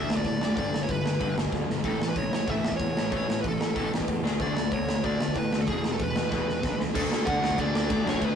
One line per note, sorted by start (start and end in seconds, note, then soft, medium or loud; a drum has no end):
0.00 0.16 E5 loud
0.09 0.20 D2 medium
0.09 0.24 D3 medium
0.09 0.24 A3 medium
0.09 snare loud
0.16 0.55 D5 medium
0.16 kick medium
0.24 0.36 A2 medium
0.24 0.40 D3 medium
0.24 0.40 A3 medium
0.24 kick medium
0.24 open hi-hat medium
0.40 0.52 F#1 medium
0.40 0.56 D3 medium
0.40 0.56 A3 medium
0.40 snare loud
0.56 0.68 G1 medium
0.56 0.72 G2 medium
0.56 0.72 D3 medium
0.56 0.73 G3 medium
0.56 0.81 D5 medium
0.56 kick loud
0.56 open hi-hat medium
0.73 0.84 G1 medium
0.73 0.87 G2 medium
0.73 0.87 D3 medium
0.73 snare loud
0.83 0.90 C#5 medium
0.88 1.11 G1 medium
0.88 1.03 G2 medium
0.88 1.03 D3 medium
0.88 1.34 B4 medium
0.88 kick loud
0.88 open hi-hat medium
1.05 1.18 G2 medium
1.05 1.19 D3 medium
1.05 snare loud
1.19 1.32 G1 medium
1.19 1.34 G2 medium
1.19 1.35 D3 medium
1.19 1.36 G3 medium
1.19 kick loud
1.19 open hi-hat medium
1.35 1.48 G1 medium
1.35 1.49 G2 medium
1.35 1.50 D3 medium
1.35 snare loud
1.45 kick medium
1.50 1.63 D2 medium
1.50 1.65 G2 medium
1.50 1.66 D3 medium
1.50 kick medium
1.50 snare medium
1.67 1.80 B1 medium
1.67 1.82 G2 medium
1.67 1.82 D3 medium
1.67 snare medium
1.84 1.95 A1 medium
1.84 1.99 A2 medium
1.84 1.99 E3 medium
1.84 1.99 A3 medium
1.84 2.07 A4 medium
1.84 kick loud
1.84 open hi-hat medium
1.99 2.11 A1 medium
1.99 2.14 A2 medium
1.99 2.14 E3 medium
1.99 snare loud
2.09 2.17 B4 medium
2.15 2.38 A1 medium
2.15 2.30 A2 medium
2.15 2.30 E3 medium
2.15 2.31 C#5 medium
2.15 kick loud
2.15 open hi-hat medium
2.31 2.46 A2 medium
2.31 2.46 E3 medium
2.31 2.50 C#5 medium
2.31 snare loud
2.48 2.59 A1 medium
2.48 2.63 A2 medium
2.48 2.63 E3 medium
2.48 2.64 A3 medium
2.48 2.73 E5 medium
2.48 kick loud
2.48 open hi-hat soft
2.64 2.75 A1 medium
2.64 2.78 A2 medium
2.64 2.79 E3 medium
2.64 snare loud
2.72 kick medium
2.76 2.91 E2 medium
2.76 3.11 C#5 medium
2.76 kick loud
2.76 open hi-hat medium
2.80 2.94 A2 medium
2.80 2.94 E3 medium
2.95 3.07 A1 medium
2.95 3.09 A2 medium
2.95 3.10 E3 medium
2.95 snare loud
3.11 3.23 A1 medium
3.11 3.26 A2 medium
3.11 3.26 E3 medium
3.11 3.27 A3 medium
3.11 kick loud
3.11 open hi-hat medium
3.16 3.39 C#5 loud
3.27 3.39 A1 medium
3.27 3.42 A2 medium
3.27 3.42 E3 medium
3.27 snare loud
3.41 3.66 A1 medium
3.41 3.58 A2 medium
3.41 3.58 E3 medium
3.41 3.43 B4 medium
3.41 kick loud
3.45 3.91 A4 medium
3.45 open hi-hat soft
3.60 3.74 A2 medium
3.60 3.74 E3 medium
3.60 snare loud
3.76 3.87 A1 medium
3.76 3.91 A2 medium
3.76 3.91 E3 medium
3.76 3.91 A3 medium
3.76 kick loud
3.76 open hi-hat medium
3.92 4.04 A1 medium
3.92 4.06 A2 medium
3.92 4.07 E3 medium
3.92 snare loud
4.00 kick medium
4.08 4.25 E2 medium
4.08 4.22 A2 medium
4.08 4.22 E3 medium
4.08 kick loud
4.08 open hi-hat medium
4.23 4.36 D2 medium
4.23 4.39 D3 medium
4.23 4.39 A3 medium
4.23 4.39 D4 loud
4.23 snare loud
4.40 4.51 D2 medium
4.40 4.55 D3 medium
4.40 4.55 A3 medium
4.40 4.55 D4 medium
4.40 4.70 D5 loud
4.40 kick loud
4.40 open hi-hat medium
4.55 4.66 D2 medium
4.55 4.70 D3 medium
4.55 4.70 A3 medium
4.55 snare loud
4.71 4.94 D2 medium
4.71 4.86 D3 medium
4.71 4.86 A3 medium
4.71 5.05 C#5 medium
4.71 kick loud
4.71 open hi-hat medium
4.88 5.02 D3 medium
4.88 5.02 A3 medium
4.88 snare loud
5.03 5.15 D2 medium
5.03 5.18 D3 medium
5.03 5.18 A3 medium
5.03 5.19 D4 medium
5.03 5.37 D5 loud
5.03 kick loud
5.03 open hi-hat medium
5.18 5.30 D2 medium
5.18 5.34 D3 medium
5.18 5.34 A3 medium
5.18 snare loud
5.28 kick medium
5.35 5.47 A2 medium
5.35 5.50 D3 medium
5.35 5.50 A3 medium
5.35 5.59 B4 medium
5.35 kick loud
5.35 open hi-hat medium
5.52 5.63 D2 medium
5.52 5.66 D3 medium
5.52 5.66 A3 medium
5.52 snare loud
5.62 5.68 A4 medium
5.67 5.79 E1 medium
5.67 5.83 E2 medium
5.67 5.83 B2 medium
5.67 5.83 E3 medium
5.67 5.92 G#4 medium
5.67 kick loud
5.67 open hi-hat medium
5.84 5.95 E1 medium
5.84 5.98 E2 medium
5.84 5.99 B2 medium
5.84 snare medium
5.92 6.00 A4 medium
5.99 6.22 E1 medium
5.99 6.14 E2 medium
5.99 6.14 B2 medium
5.99 kick loud
5.99 open hi-hat medium
6.03 6.81 B4 medium
6.16 6.29 E2 medium
6.16 6.30 B2 medium
6.16 snare loud
6.31 6.42 E1 medium
6.31 6.46 E2 medium
6.31 6.46 B2 medium
6.31 6.47 E3 loud
6.31 kick loud
6.31 snare medium
6.46 6.58 E1 medium
6.46 6.61 E2 medium
6.46 6.62 B2 medium
6.46 snare medium
6.62 6.74 B1 medium
6.62 6.77 E2 medium
6.62 6.77 B2 medium
6.62 kick loud
6.62 snare medium
6.77 6.89 C#2 medium
6.77 6.93 E2 medium
6.77 6.93 B2 medium
6.77 snare medium
6.94 7.09 D2 medium
6.94 7.24 D3 medium
6.94 7.25 A3 loud
6.94 7.26 D4 loud
6.94 7.28 A4 loud
6.94 kick loud
6.94 crash loud
7.09 7.25 D2 medium
7.09 snare loud
7.25 7.44 D3 medium
7.25 7.40 D3 medium
7.25 7.43 A3 medium
7.25 7.42 D4 loud
7.25 7.59 F#5 loud
7.25 kick loud
7.25 ride medium
7.41 7.56 D2 loud
7.41 7.57 D3 medium
7.41 7.58 A3 medium
7.41 7.58 D4 medium
7.41 snare loud
7.51 kick medium
7.58 7.72 D2 loud
7.58 7.89 D3 medium
7.58 7.91 A3 loud
7.58 7.90 D4 loud
7.58 7.75 D5 medium
7.58 kick loud
7.58 ride medium
7.73 7.89 D2 medium
7.73 7.90 A3 medium
7.73 7.89 D4 medium
7.73 snare loud
7.77 7.87 D3 medium
7.77 8.05 D5 loud
7.90 8.05 D2 loud
7.90 8.05 D3 medium
7.90 8.06 A3 loud
7.90 8.05 D4 loud
7.90 kick loud
7.90 ride medium
8.05 8.21 F#2 medium
8.05 8.20 D3 medium
8.05 8.21 A3 medium
8.05 8.21 D4 medium
8.05 8.24 C#5 medium
8.05 snare loud
8.14 kick medium
8.21 8.35 D2 loud
8.21 8.35 D3 medium
8.21 8.35 A3 loud
8.21 8.35 D4 medium
8.21 8.35 B4 medium
8.21 kick loud
8.21 ride medium